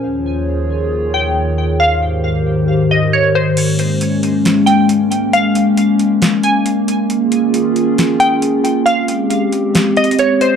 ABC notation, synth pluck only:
X:1
M:4/4
L:1/8
Q:1/4=136
K:Bbdor
V:1 name="Synth pluck"
z4 z g z2 | f4- f e d c | z4 z g z2 | f4- f a3 |
z4 z g z2 | f4- f e d c |]